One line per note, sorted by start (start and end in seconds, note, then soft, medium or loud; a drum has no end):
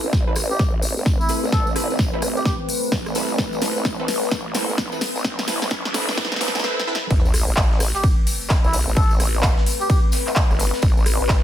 0.00 6.60 A3 medium
0.00 6.60 C4 medium
0.00 6.60 B4 medium
0.00 tambourine soft
0.00 riser medium
0.04 0.25 A1 medium
0.13 kick loud
0.13 snare soft
0.13 tambourine soft
0.27 0.58 A1 medium
0.27 0.34 C4 medium
0.27 0.34 E4 medium
0.27 0.34 A4 medium
0.27 0.34 B4 medium
0.36 cross-stick medium
0.36 open hi-hat medium
0.36 tambourine medium
0.51 0.61 G4 medium
0.51 tambourine soft
0.59 0.95 A1 loud
0.59 kick loud
0.59 snare soft
0.59 tambourine soft
0.82 open hi-hat loud
0.82 tambourine medium
0.97 1.18 G1 loud
0.97 tambourine soft
1.06 kick loud
1.06 snare medium
1.06 tambourine medium
1.20 1.31 E4 medium
1.20 tambourine soft
1.29 1.40 C4 medium
1.29 1.40 E4 medium
1.29 1.40 A4 medium
1.29 1.40 B4 medium
1.29 open hi-hat medium
1.29 tambourine medium
1.44 1.88 A1 loud
1.44 tambourine soft
1.52 1.68 A4 medium
1.52 kick loud
1.52 snare medium
1.52 tambourine soft
1.67 tambourine soft
1.76 1.86 C4 medium
1.76 1.86 E4 medium
1.76 1.86 A4 medium
1.76 1.86 B4 medium
1.76 cross-stick medium
1.76 open hi-hat loud
1.76 tambourine medium
1.90 2.11 A1 medium
1.90 tambourine soft
1.99 kick loud
1.99 snare medium
1.99 tambourine soft
2.13 2.44 A1 medium
2.13 2.20 C4 medium
2.13 2.20 E4 medium
2.13 2.20 A4 medium
2.13 2.20 B4 medium
2.22 cross-stick medium
2.22 open hi-hat medium
2.22 tambourine medium
2.37 2.42 G4 medium
2.37 tambourine soft
2.45 2.55 G4 medium
2.45 kick loud
2.45 snare medium
2.45 tambourine medium
2.69 open hi-hat loud
2.69 tambourine medium
2.83 tambourine soft
2.92 3.37 A1 loud
2.92 kick loud
2.92 snare medium
2.92 tambourine medium
3.06 cross-stick medium
3.06 tambourine soft
3.15 3.26 C4 medium
3.15 3.26 E4 medium
3.15 3.26 A4 medium
3.15 3.26 B4 medium
3.15 open hi-hat medium
3.15 tambourine medium
3.28 tambourine soft
3.38 3.74 A1 medium
3.38 kick loud
3.38 snare medium
3.38 tambourine medium
3.53 tambourine soft
3.61 3.72 C4 medium
3.61 3.72 E4 medium
3.61 3.72 A4 medium
3.61 3.72 B4 medium
3.61 snare medium
3.61 open hi-hat loud
3.61 tambourine medium
3.76 3.97 A1 loud
3.76 tambourine soft
3.85 kick loud
3.85 snare medium
3.85 tambourine medium
3.99 4.30 A1 loud
3.99 4.06 C4 medium
3.99 4.06 E4 medium
3.99 4.06 A4 medium
3.99 4.06 B4 medium
4.08 snare medium
4.08 open hi-hat loud
4.08 tambourine medium
4.23 tambourine soft
4.31 4.67 A1 loud
4.31 kick loud
4.31 snare medium
4.31 tambourine medium
4.54 4.65 C4 medium
4.54 4.65 E4 medium
4.54 4.65 A4 medium
4.54 4.65 B4 medium
4.54 snare medium
4.54 open hi-hat loud
4.54 tambourine loud
4.69 4.90 G1 loud
4.69 tambourine soft
4.78 kick loud
4.78 snare medium
4.78 tambourine soft
4.92 4.99 C4 medium
4.92 4.99 E4 medium
4.92 4.99 A4 medium
4.92 4.99 B4 medium
4.92 tambourine soft
5.01 snare medium
5.01 open hi-hat medium
5.01 tambourine medium
5.16 5.60 A1 loud
5.16 tambourine soft
5.24 kick loud
5.24 snare medium
5.24 tambourine medium
5.24 noise sweep medium
5.39 snare medium
5.39 tambourine soft
5.48 5.58 C4 medium
5.48 5.58 E4 medium
5.48 5.58 A4 medium
5.48 5.58 B4 medium
5.48 snare medium
5.48 open hi-hat loud
5.48 tambourine medium
5.62 5.83 A1 loud
5.62 snare medium
5.62 tambourine soft
5.71 kick loud
5.71 snare loud
5.71 tambourine soft
5.85 6.16 A1 loud
5.85 snare medium
5.94 6.05 C4 medium
5.94 6.05 E4 medium
5.94 6.05 A4 medium
5.94 6.05 B4 medium
5.94 snare loud
5.94 open hi-hat loud
5.94 tambourine medium
6.09 snare medium
6.09 tambourine soft
6.17 6.30 A1 medium
6.17 6.28 C4 medium
6.17 6.28 E4 medium
6.17 6.28 A4 medium
6.17 6.28 B4 medium
6.17 kick loud
6.17 snare loud
6.17 tambourine soft
6.25 snare medium
6.32 6.53 A1 loud
6.32 snare medium
6.36 snare medium
6.41 6.51 C4 medium
6.41 6.51 E4 medium
6.41 6.51 A4 medium
6.41 6.51 B4 medium
6.41 snare loud
6.41 open hi-hat loud
6.41 tambourine medium
6.48 snare medium
6.55 6.64 C2 loud
6.55 snare medium
6.55 tambourine soft
6.60 snare medium
6.64 6.74 C4 medium
6.64 6.74 E4 medium
6.64 6.74 A4 medium
6.64 6.74 B4 loud
6.64 snare medium
6.80 snare medium
6.87 6.98 C4 medium
6.87 6.98 E4 medium
6.87 6.98 A4 medium
6.87 6.98 B4 loud
6.95 snare medium
7.11 7.23 A1 loud
7.11 11.43 A3 medium
7.11 11.43 C4 medium
7.11 11.43 B4 medium
7.11 kick loud
7.11 ride medium
7.11 tambourine soft
7.11 sub drop medium
7.25 7.46 A1 loud
7.25 tambourine soft
7.34 cross-stick medium
7.34 open hi-hat loud
7.34 ride medium
7.34 tambourine medium
7.47 7.56 A1 loud
7.47 tambourine soft
7.57 7.92 A1 loud
7.57 kick loud
7.57 snare loud
7.57 clap loud
7.57 ride medium
7.57 tambourine soft
7.71 snare soft
7.80 cross-stick medium
7.80 open hi-hat loud
7.80 open hi-hat medium
7.80 tambourine loud
7.95 8.06 G4 medium
7.95 snare soft
7.95 tambourine soft
8.04 kick loud
8.04 ride medium
8.04 tambourine soft
8.27 open hi-hat loud
8.27 ride medium
8.27 tambourine medium
8.41 tambourine soft
8.50 kick loud
8.50 snare loud
8.50 clap loud
8.50 ride medium
8.50 tambourine medium
8.64 8.85 B1 loud
8.64 8.75 E4 medium
8.64 tambourine soft
8.73 snare soft
8.73 open hi-hat loud
8.73 ride medium
8.73 tambourine medium
8.87 8.95 A1 loud
8.87 tambourine soft
8.96 9.18 A1 medium
8.96 9.12 A4 medium
8.96 kick loud
8.96 ride medium
8.96 tambourine medium
9.11 tambourine soft
9.20 9.55 A1 loud
9.20 cross-stick medium
9.20 open hi-hat loud
9.20 ride medium
9.20 tambourine medium
9.34 tambourine soft
9.43 kick loud
9.43 snare loud
9.43 clap loud
9.43 ride medium
9.43 tambourine medium
9.58 snare medium
9.66 open hi-hat loud
9.66 ride medium
9.66 tambourine medium
9.81 9.86 G4 medium
9.81 tambourine soft
9.90 9.99 G4 medium
9.90 kick loud
9.90 ride medium
9.90 tambourine medium
10.12 snare medium
10.12 open hi-hat loud
10.12 ride medium
10.12 tambourine medium
10.27 clap soft
10.27 tambourine soft
10.36 kick loud
10.36 snare loud
10.36 clap loud
10.36 ride medium
10.36 tambourine medium
10.51 10.72 G1 loud
10.51 cross-stick medium
10.51 tambourine soft
10.59 snare soft
10.59 open hi-hat loud
10.59 ride medium
10.59 tambourine loud
10.73 snare medium
10.73 tambourine soft
10.82 10.95 A1 medium
10.82 kick loud
10.82 ride medium
10.82 tambourine medium
10.97 11.18 A1 loud
10.97 tambourine soft
11.06 cross-stick medium
11.06 open hi-hat loud
11.06 ride medium
11.06 tambourine medium
11.20 11.28 A1 medium
11.20 tambourine soft
11.29 11.43 A1 loud
11.29 kick loud
11.29 snare loud
11.29 clap loud
11.29 ride medium
11.29 tambourine medium